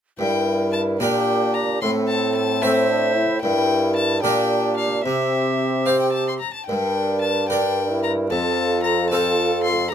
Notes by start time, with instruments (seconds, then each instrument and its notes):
0.18 harpsichord G2, bassoon G2, trombone E4, recorder A#4, violin G5
0.73 violin A5
1.00 bassoon A#2, harpsichord A#2 A#3 D4 A#4, trombone D4, recorder G4, violin G5
1.54 violin A#5
1.81 bassoon A2, harpsichord A2, trombone C4, recorder A4 A#4, violin C6
2.08 violin A5
2.36 violin A5
2.62 harpsichord A3 C4 C5, trombone C4, recorder C5, violin E5
2.88 trombone D4
3.15 trombone E4
3.42 bassoon G2, harpsichord G2, trombone E4, recorder A#4, violin G5
3.96 violin A5
4.22 bassoon A#2, harpsichord A#2 A#3 D4 A#4, trombone D4, recorder G4, violin G5
4.77 violin F5
5.03 bassoon C3, harpsichord C3, trombone C4, recorder G4, violin E5
5.86 harpsichord C4 C5, violin F5
6.00 violin G5
6.13 violin A5
6.28 violin C6
6.40 violin A#5
6.54 violin A5
6.66 bassoon G2, harpsichord G2, trombone D4, recorder A#4, violin G5
7.22 violin A5
7.50 harpsichord D4 A#4, trombone D4, recorder A#4, violin G5
7.91 trombone E4
8.03 violin A#5
8.30 harpsichord F2, bassoon F2, trombone F4, recorder A4, violin A5
8.83 violin A#5
9.10 harpsichord C4 F4 A4, trombone F4, recorder A#4, violin A5
9.15 recorder A4
9.64 violin C6
9.91 violin A#5